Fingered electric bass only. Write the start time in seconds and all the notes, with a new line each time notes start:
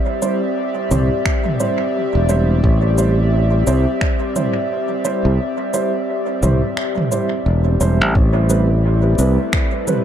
0.91 C2
2.15 E1
2.64 A1
3.67 C2
5.25 C2
6.43 C2
7.46 E1
7.81 E1
8.01 A1
8.15 A1
9.19 C2